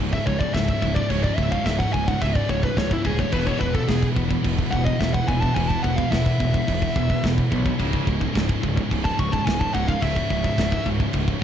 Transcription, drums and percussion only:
0.13 kick
0.27 kick
0.41 kick
0.54 kick, snare, crash
0.68 kick
0.82 kick
0.96 kick
1.10 kick, crash
1.24 kick
1.38 kick
1.52 kick
1.66 kick, snare, crash
1.80 kick
1.94 kick
2.08 kick
2.22 kick, crash
2.35 kick
2.49 kick
2.63 kick
2.77 kick, snare, crash
2.91 kick
3.05 kick
3.19 kick
3.32 kick, crash
3.47 kick
3.61 kick
3.75 kick
3.88 kick, snare, crash
4.03 kick
4.16 kick
4.31 kick
4.44 kick, crash
4.59 kick
4.72 kick
4.87 kick
5.01 kick, snare, crash
5.14 kick
5.28 kick
5.42 kick
5.56 kick, crash
5.70 kick
5.84 kick
5.98 kick
6.12 kick, snare, crash
6.26 kick
6.40 kick
6.54 kick
6.68 kick, crash
6.82 kick
6.96 kick
7.10 kick
7.24 kick, snare, crash
7.38 kick
7.52 kick
7.66 kick
7.80 kick, crash
7.93 kick
8.07 kick
8.21 kick
8.35 kick, snare, crash
8.49 kick
8.63 kick
8.77 kick
8.91 kick, crash
9.05 kick
9.19 kick
9.33 kick
9.47 kick, snare, crash
9.61 kick
9.75 kick
9.89 kick
10.02 kick, crash
10.16 kick
10.30 kick
10.44 kick
10.58 kick, snare, crash
10.72 kick
10.86 kick
11.00 kick
11.13 kick, crash
11.28 kick

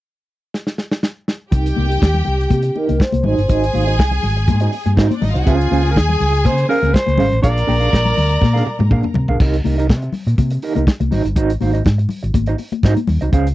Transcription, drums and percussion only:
0.54 snare
0.67 snare
0.78 snare
0.91 snare
1.03 snare
1.28 snare
1.52 kick, closed hi-hat
1.66 closed hi-hat
1.76 muted conga, high conga
1.91 closed hi-hat
2.01 kick, snare, muted conga
2.14 closed hi-hat, low conga
2.25 muted conga, low conga
2.41 closed hi-hat
2.50 kick, closed hi-hat, high conga
2.62 closed hi-hat
2.76 muted conga
2.89 closed hi-hat, high conga
3.00 kick, snare
3.12 closed hi-hat, high conga
3.24 muted conga, low conga
3.38 closed hi-hat
3.49 kick, closed hi-hat, muted conga
3.63 closed hi-hat
3.73 open hi-hat, high conga
3.88 closed hi-hat
3.99 kick, snare
4.11 closed hi-hat, low conga
4.23 open hi-hat, low conga
4.38 closed hi-hat
4.48 kick, closed hi-hat, muted conga, high conga
4.60 closed hi-hat
4.72 open hi-hat, muted conga
4.86 closed hi-hat, high conga
4.97 kick, snare, muted conga
5.11 closed hi-hat, high conga
5.22 open hi-hat, muted conga, low conga
5.36 closed hi-hat
5.47 kick, closed hi-hat, muted conga
5.61 closed hi-hat
5.71 open hi-hat, high conga
5.86 closed hi-hat
5.96 kick, snare
6.09 closed hi-hat, low conga
6.20 open hi-hat, low conga
6.35 closed hi-hat
6.45 kick, closed hi-hat, muted conga, high conga
6.58 closed hi-hat
6.71 open hi-hat
6.83 closed hi-hat, high conga
6.94 kick, snare, muted conga
7.07 closed hi-hat, high conga
7.18 open hi-hat, muted conga, low conga
7.33 closed hi-hat
7.44 kick, closed hi-hat
7.58 closed hi-hat
7.68 open hi-hat, muted conga, high conga
7.82 closed hi-hat
7.93 kick, snare, muted conga
8.05 closed hi-hat, low conga
8.17 open hi-hat, low conga
8.32 closed hi-hat
8.42 kick, snare, high conga
8.56 snare
8.67 high tom
8.79 high tom, high conga
8.91 kick, mid tom, muted conga
9.03 mid tom, high conga
9.14 floor tom, low conga
9.28 floor tom
9.40 kick, crash
9.54 closed hi-hat
9.64 open hi-hat, high conga
9.79 closed hi-hat
9.89 kick, snare
10.02 closed hi-hat
10.12 open hi-hat, muted conga, low conga
10.28 closed hi-hat
10.38 kick, closed hi-hat, high conga
10.50 closed hi-hat
10.62 open hi-hat
10.76 closed hi-hat, high conga
10.87 kick, snare, muted conga
11.01 closed hi-hat, high conga
11.12 open hi-hat, low conga
11.26 closed hi-hat
11.36 kick, closed hi-hat, muted conga
11.50 closed hi-hat
11.61 open hi-hat, muted conga, high conga
11.75 closed hi-hat
11.85 kick, snare, muted conga
11.99 closed hi-hat
12.09 open hi-hat, low conga
12.24 closed hi-hat
12.34 kick, closed hi-hat, muted conga, high conga
12.46 closed hi-hat
12.58 open hi-hat, muted conga
12.72 closed hi-hat, high conga
12.83 kick, snare, muted conga
12.97 closed hi-hat, high conga
13.07 open hi-hat, low conga
13.22 closed hi-hat
13.33 kick, closed hi-hat, muted conga
13.47 closed hi-hat

